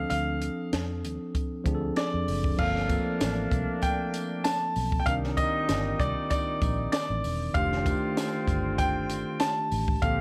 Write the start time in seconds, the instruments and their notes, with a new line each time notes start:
Already playing: tine electric piano F3 C4 D4 A4
0.10 fingered electric bass D2, grand piano F5, closed hi-hat
0.42 closed hi-hat
0.73 fingered electric bass F2, snare, closed hi-hat
1.04 fingered electric bass D#2, closed hi-hat
1.35 kick, closed hi-hat
1.64 fingered electric bass D2, tine electric piano F3 C4 D4 G#4, kick, closed hi-hat
1.75 tine electric piano A4
1.96 grand piano D5, snare, closed hi-hat
2.14 fingered electric bass F2
2.28 fingered electric bass F#1, open hi-hat
2.44 kick
2.57 fingered electric bass G1, tine electric piano F3 A#3 C4 A4, horn section A3 A#3 D4, grand piano F5, kick, crash
2.76 snare
2.88 tine electric piano F3 A#3 C4, kick, closed hi-hat, tambourine
2.92 tine electric piano A4
3.21 fingered electric bass A1, snare, closed hi-hat, tambourine
3.51 fingered electric bass C2, kick, closed hi-hat, tambourine
3.82 grand piano G5, kick, closed hi-hat, tambourine
4.14 closed hi-hat, tambourine
4.44 grand piano A5, snare, closed hi-hat, tambourine
4.76 fingered electric bass B1, open hi-hat, tambourine
4.92 kick
5.00 grand piano G5
5.05 fingered electric bass C2, horn section A#2 G3 D#4, tine electric piano D#3 C4 D4 A#4, grand piano F5, kick, closed hi-hat
5.24 snare
5.36 tine electric piano D#3 C4 D#4 A#4, grand piano D#5, kick, closed hi-hat, tambourine
5.69 fingered electric bass G1, snare, closed hi-hat, tambourine
6.00 fingered electric bass C2, grand piano D5, kick, closed hi-hat
6.30 grand piano D5, kick, closed hi-hat, tambourine
6.62 fingered electric bass A#1, kick, closed hi-hat, tambourine
6.92 grand piano D5, snare, closed hi-hat, tambourine
7.10 fingered electric bass A1
7.24 fingered electric bass E1, open hi-hat, tambourine
7.53 fingered electric bass F1, horn section D3 C4 F4, tine electric piano D#3 A3 D4 G4, grand piano F5, kick, closed hi-hat, tambourine
7.72 snare
7.84 tine electric piano D#3 A3 D4 G4, kick, closed hi-hat, tambourine
8.17 snare, closed hi-hat, tambourine
8.48 fingered electric bass G1, kick, closed hi-hat, tambourine
8.78 grand piano G5, kick, closed hi-hat, tambourine
9.10 closed hi-hat, tambourine
9.40 grand piano A5, snare, closed hi-hat, tambourine
9.72 fingered electric bass A1, open hi-hat, tambourine
9.88 kick
10.01 fingered electric bass A#1, tine electric piano D3 A#3 C4, horn section D3 C4 G4, grand piano F5, kick, closed hi-hat, tambourine
10.05 tine electric piano A4